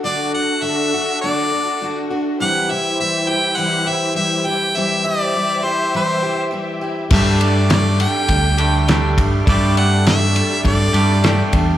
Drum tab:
CC |--------|--------|--------|x-------|
RD |--------|--------|--------|-xxxxxxx|
SD |--------|--------|--------|--o---o-|
BD |--------|--------|--------|o---o--o|

CC |--------|
RD |xxxxxxxx|
SD |--o---o-|
BD |o---o--o|